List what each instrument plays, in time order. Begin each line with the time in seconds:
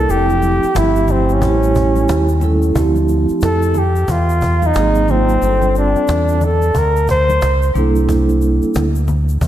Already playing: flugelhorn A4
0.08 fingered electric bass F1, vibraphone F3 A3 C4 E4, flugelhorn G4, cajon slap, shaker
0.12 vibraphone G4
0.30 high conga, shaker
0.42 cajon slap, high conga, shaker
0.63 shaker
0.75 fingered electric bass G1, vibraphone F3 A3 C4 E4 G4, flugelhorn E4, cajon slap, high conga, low conga, shaker
0.96 shaker
1.08 flugelhorn C4, cajon slap, low conga, shaker
1.29 flugelhorn C#4, shaker
1.41 fingered electric bass A1, vibraphone G3 A3 C#4 E4, cajon bass, shaker
1.45 vibraphone G4
1.63 cajon slap, shaker
1.75 cajon bass, shaker
1.96 high conga, shaker
2.08 fingered electric bass D#2, cajon slap, shaker
2.29 shaker
2.40 vibraphone G3 A3 C#4 E4, cajon slap, low conga, shaker
2.44 vibraphone A4
2.62 shaker
2.74 fingered electric bass D2, vibraphone A3 C4 E4, cajon bass, shaker
2.78 vibraphone F3 G4
2.96 high conga, shaker
3.08 cajon slap, shaker
3.29 muted fingered electric bass stroke, cajon slap, shaker
3.41 fingered electric bass F2, flugelhorn A4, cajon slap, shaker
3.62 shaker
3.74 flugelhorn G4, cajon slap, low conga, shaker
3.96 shaker
4.08 fingered electric bass E2, flugelhorn F4, cajon bass, shaker
4.29 shaker
4.41 cajon bass, shaker
4.62 flugelhorn D#4, high conga, shaker
4.74 fingered electric bass G#1, vibraphone F#3 A#3 C4 D#4 G#4, cajon slap, shaker
4.95 shaker
5.07 vibraphone F#3 A#3 C4 D#4 F4, flugelhorn C4, cajon slap, low conga, shaker
5.29 shaker
5.40 fingered electric bass G1, vibraphone G3 C4 D4 F4 A4, cajon slap, shaker
5.62 high conga, shaker
5.75 flugelhorn D4, cajon slap, shaker
5.96 muted fingered electric bass stroke, shaker
6.08 fingered electric bass E2, cajon slap, shaker
6.28 shaker
6.41 flugelhorn A4, cajon slap, low conga, shaker
6.62 shaker
6.75 fingered electric bass D2, flugelhorn A#4, cajon bass, shaker
6.96 cajon slap, shaker
7.08 flugelhorn C5, cajon bass, shaker
7.29 high conga, shaker
7.42 fingered electric bass C#2, cajon slap, shaker
7.62 shaker
7.74 fingered electric bass C2, vibraphone G3 A#3 D4 E4, cajon slap, low conga, shaker
7.78 vibraphone A4
7.96 shaker
8.09 cajon bass, shaker
8.29 high conga, shaker
8.41 cajon slap, shaker
8.62 muted fingered electric bass stroke, cajon slap, shaker
8.74 fingered electric bass D2, cajon slap, shaker
8.95 shaker
9.08 cajon slap, low conga, shaker
9.29 shaker
9.41 fingered electric bass E2, cajon bass, shaker